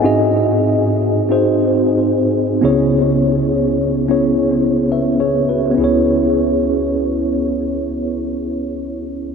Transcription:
<<
  \new Staff \with { instrumentName = "Tine electric piano" } { \time 6/8 \key cis \minor \tempo 4. = 39 << { gis''16 r2 r8. | r2 r16 <b' e''>16 <gis' cis''>16 <fis' b'>16~ | <fis' b'>16 r2 r8. | } \\ { <bis dis' fis' gis' dis''>4 r8 <bis dis' fis' gis' bis'>4 r8 | <b cis' e' gis' cis''>4 r8 <b cis' e' gis' cis''>4 r8 | <b cis' e' gis' cis''>2. | } >> }
  \new Staff \with { instrumentName = "Tine electric piano" } { \clef bass \time 6/8 \key cis \minor gis,2. | <cis, cis>2. | cis,2. | }
>>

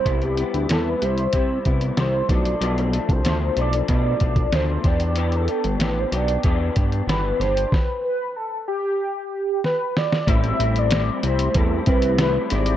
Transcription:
<<
  \new Staff \with { instrumentName = "Soft synth lead" } { \time 4/4 \key a \minor \tempo 4 = 94 c''16 g'8. a'16 b'16 c''4 r8 c''8 d''8~ | d''16 a'8 c''8. d''8 d''4 c''8 d''8~ | d''16 a'8. b'16 c''16 d''4 r8 b'8 c''8 | b'8 b'8 a'8 g'4. b'8 d''8 |
e''8. d''8. c''8 a'8 b'8 b'8 d''8 | }
  \new Staff \with { instrumentName = "Analog synth pad" } { \time 4/4 \key a \minor r1 | r1 | r1 | r1 |
<a c' g'>1 | }
  \new Staff \with { instrumentName = "Clean electric guitar" } { \time 4/4 \key a \minor <c g b e'>8 <g b e'>8 <c g b e'>8 <g e'>8 <c g e'>8 <g b e'>8 <c g e'>8 <f a d'>8 | <b, f a d'>8 <f a d'>8 <b, f a d'>8 <f a d'>8 <b, f a d'>8 <f a d'>8 <b, f a d'>8 <b d' g'>8 | <e b d' g'>8 <b d' g'>8 <e b d' g'>8 <b d' g'>8 <e b d' g'>8 <b d' g'>8 <e b d' g'>8 <d' g'>8 | r1 |
<a, g c' e'>8 <g c' e'>8 <a, g c' e'>8 <g c' e'>8 <a, g c' e'>8 <g c' e'>8 <a, g c' e'>8 <g c' e'>8 | }
  \new Staff \with { instrumentName = "Analog synth bass" } { \clef bass \time 4/4 \key a \minor c,8. d,16 e,8 c,8 c8 c,8 c,8 b,,8 | b,,8. c,16 d,8 b,,8 b,8 b,,8 d,8 e,8~ | e,8. g,,16 a,,8 b,,8 e,8 g,8 g,,8 g,,8 | r1 |
a,,8 a,,4 c,8 e,8 c,4 gis,,8 | }
  \new DrumStaff \with { instrumentName = "Drums" } \drummode { \time 4/4 <hh bd>16 hh16 hh16 hh16 <hh sn>8 hh16 hh16 <hh bd>8 <hh bd>16 hh16 <hh sn>8 <hh bd sn>16 hh16 | hh16 hh16 hh16 <hh bd>16 <hh sn>8 hh16 hh16 <hh bd>8 <hh bd>16 <hh bd>16 <hh sn>8 <hh bd sn>16 hh16 | hh16 hh16 hh16 hh16 <hh sn>8 hh16 hh16 <hh bd>8 <hh bd>16 hh16 <hh sn>8 <hh sn>16 hh16 | <bd sn>4 r4 r4 sn8 sn16 sn16 |
<hh bd>16 hh16 hh16 hh16 <hh sn>8 hh16 hh16 <hh bd>8 <hh bd>16 hh16 <hh sn>8 <hh sn>16 hh16 | }
>>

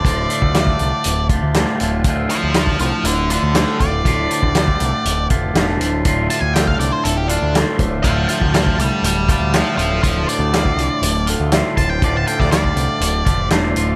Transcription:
<<
  \new Staff \with { instrumentName = "Lead electric guitar" } { \time 4/4 \key d \minor \tempo 4 = 120 d''2~ d''8 r4. | r8 <c'' f''>8 <c'' f''>8 <c'' f''>8 <a' d''>8 <a' d''>8 <a' d''>8 d''8~ | d''2~ d''8 r4. | r8 a''16 gis''16 g''16 f''16 d''16 c''16 a'16 g'16 d'8 r4 |
<f'' a''>8 <f'' a''>8 <f'' a''>8 <d'' g''>8 <d'' g''>8 <d'' g''>8 <c'' f''>8 <c'' f''>8 | <c'' f''>8 d''2 r4 a''16 g''16 | d''16 a''16 g''16 d''16 d''2 r4 | }
  \new Staff \with { instrumentName = "Clean electric guitar" } { \time 4/4 \key d \minor <d, a, d a f'>8 <d a f'>8 <a, d a f'>4. <d a f'>8 <d, a, d a f'>8 <d a f'>8 | <d, a, d a f'>8 <d a f'>8 <a, d a f'>4. <d a f'>8 <d, a, d a f'>8 <d a f'>8 | <d, a, d a f'>8 <d a f'>8 <a, d a f'>4. <d a f'>8 <d, a, d a f'>8 <d a f'>8 | <d, a, d a f'>8 <d a f'>8 <a, d a f'>4. <d a f'>8 <d, a, d a f'>8 <d a f'>8 |
<d, a, d a f'>8 <d a f'>8 <a, d a f'>4. <d a f'>8 <d, a, d a f'>8 <d a f'>8 | <d, a, d a f'>8 <d a f'>8 <a, d a f'>4. <d a f'>8 <d, a, d a f'>8 <d a f'>8 | <d, a, d a f'>8 <d a f'>8 <a, d a f'>4. <d a f'>8 <d, a, d a f'>8 <d a f'>8 | }
  \new Staff \with { instrumentName = "Picked electric bass" } { \clef bass \time 4/4 \key d \minor r8. d,8. c,16 r16 d,,8. d,8 r16 d,,8 | d,,8 r16 d,8. c,16 r16 d,,8. d,8 r16 d,,8 | d,,8 r16 d,8. c,16 r16 d,,8 f,,8 e,,8 d,,8 | d,,8 r16 d,8. c,16 r16 d,,8. d,8 r16 d,,8 |
d,,8 r16 d,8. c,16 r16 d,,8. d,8 r16 d,,8 | d,,8 r16 d,8. c,16 r16 d,,8. d,8 r16 d,,8 | d,,8 r16 d,8. c,16 r16 d,,8 f,,8 e,,8 d,,8 | }
  \new DrumStaff \with { instrumentName = "Drums" } \drummode { \time 4/4 <hh bd>8 hh16 bd16 <hh sn>16 bd16 hh8 hh8 <hh bd>8 <hh sn>8 hh8 | <hh bd>8 hh8 <hh sn>16 <bd sn>16 hh8 hh8 hh8 <hh sn>8 <hh bd>8 | <hh bd>8 hh16 bd16 <hh sn>16 bd16 hh8 hh8 <hh bd>8 <hh sn>8 hh8 | <hh bd>8 hh8 <hh sn>16 bd16 hh8 hh8 hh8 <hh sn>8 <hh bd>8 |
<hh bd>8 hh16 bd16 <hh sn>16 bd16 hh8 hh8 <hh bd>8 <hh sn>8 hh8 | <hh bd>8 hh8 <hh sn>16 bd16 hh8 hh8 hh8 <hh sn>8 <hh bd>8 | <hh bd>8 hh16 <bd sn>16 <hh sn>16 bd16 hh8 hh8 <hh bd>8 <hh sn>8 hh8 | }
>>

